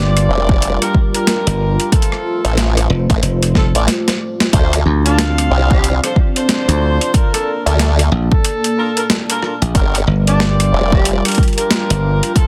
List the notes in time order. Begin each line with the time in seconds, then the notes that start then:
Already playing: G1 G3 D4 F4 G4 A#4 D5
0.17 cross-stick, closed hi-hat
0.29 F1
0.49 kick
0.62 closed hi-hat
0.81 D4 F4 G4 A#4, cross-stick, closed hi-hat
0.94 kick
1.14 D4 F4 G4 A#4, closed hi-hat
1.27 snare, closed hi-hat
1.47 G1, closed hi-hat
1.80 closed hi-hat
1.92 A3 C4 F4 A4 C5, kick, closed hi-hat
2.02 closed hi-hat
2.12 cross-stick
2.45 A1 A3 C4 F4 A4, closed hi-hat
2.57 snare, closed hi-hat
2.77 cross-stick, closed hi-hat
2.90 F1
3.10 A1, kick, closed hi-hat
3.22 F1, closed hi-hat
3.43 closed hi-hat
3.55 A3 C4 F4 A4, kick, snare
3.75 A1 A3 C4 F4 D5, closed hi-hat
3.88 snare, closed hi-hat
4.08 snare, closed hi-hat
4.40 snare, closed hi-hat
4.53 D2 C4 D4 F4 A4 C5 D5, kick, closed hi-hat
4.73 cross-stick, closed hi-hat
4.86 D2
5.05 D4 F4 A4 F5, closed hi-hat
5.19 snare, closed hi-hat
5.38 cross-stick, closed hi-hat
5.51 C2
5.70 G4, kick
5.84 closed hi-hat
6.03 D4 F4 A4 C5, cross-stick, closed hi-hat
6.16 kick
6.36 D4 F4 A4 C5, closed hi-hat
6.49 snare, closed hi-hat
6.68 D2, closed hi-hat
7.01 closed hi-hat
7.14 A#3 D4 F4 A4 A#4 A5, kick, closed hi-hat
7.33 A4, cross-stick, closed hi-hat
7.66 D2 D4 F4 A4 A#4, closed hi-hat
7.79 A4, snare, closed hi-hat
7.99 cross-stick, closed hi-hat
8.12 A#1
8.31 A4, kick
8.45 closed hi-hat
8.64 closed hi-hat
8.77 D4 F4 A4 A#4
8.97 D4 F4 A4 A#4, closed hi-hat
9.10 snare, closed hi-hat
9.29 D4 F4 A4 A#4, closed hi-hat
9.42 D4 F4 A4 A#4, cross-stick
9.62 A#1, closed hi-hat
9.74 G1 G3 D4 F4 G4 A#4, kick, closed hi-hat
9.95 cross-stick, closed hi-hat
10.07 G1
10.27 D4 F4 G4 D5, closed hi-hat
10.40 snare
10.60 cross-stick, closed hi-hat
10.73 F1
10.92 G4, kick
11.05 closed hi-hat
11.25 D4 F4 G4 A#4, cross-stick, closed hi-hat
11.28 closed hi-hat
11.32 closed hi-hat
11.35 kick, closed hi-hat
11.38 closed hi-hat
11.43 closed hi-hat
11.48 closed hi-hat
11.53 closed hi-hat
11.58 D4 F4 G4 A#4, closed hi-hat
11.71 snare, closed hi-hat
11.90 G1, closed hi-hat
12.23 closed hi-hat
12.36 A3 C4 F4 A4, kick, closed hi-hat